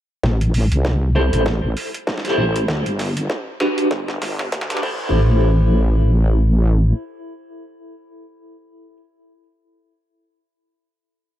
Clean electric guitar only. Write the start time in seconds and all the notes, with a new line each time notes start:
1.15 E4 G4 A4 C5
2.24 E4 G4 A4 C5
2.37 E4 G4 A4 C5
3.60 D4 F#4 G4 B4
4.69 D4 F#4 G4 B4
4.82 E4 G4 A4 C5